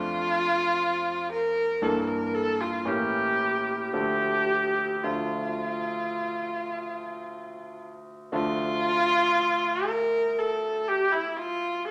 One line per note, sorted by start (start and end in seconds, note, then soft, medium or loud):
0.00 1.78 F2 medium
0.00 1.78 F3 soft
0.00 1.78 A3 soft
0.00 1.78 D4 soft
0.00 1.31 F4 loud
1.32 1.84 A#4 loud
1.82 2.83 G2 medium
1.82 2.83 E3 medium
1.82 2.83 A#3 medium
1.82 2.83 D4 soft
1.82 2.09 A4 medium
2.07 2.36 A#4 medium
2.34 2.62 A4 loud
2.60 2.88 F4 medium
2.85 3.90 A2 medium
2.85 3.90 E3 soft
2.85 3.90 A#3 soft
2.85 3.90 C#4 soft
2.85 3.93 G4 medium
3.93 5.01 D2 medium
3.93 5.00 F3 soft
3.93 5.00 A3 soft
3.93 5.00 D4 soft
3.93 5.05 G4 loud
5.04 8.28 D2 soft
5.04 8.28 F3 soft
5.04 8.28 A3 soft
5.04 8.28 D4 soft
5.04 7.78 F4 medium
8.32 11.91 D2 medium
8.32 11.91 F3 medium
8.32 11.91 A3 medium
8.32 11.91 D4 medium
8.32 9.89 F4 loud
9.88 10.40 A#4 loud
10.38 10.90 A4 medium
10.88 11.14 G4 loud
11.12 11.38 E4 medium
11.36 11.87 F4 medium
11.87 11.91 A4 loud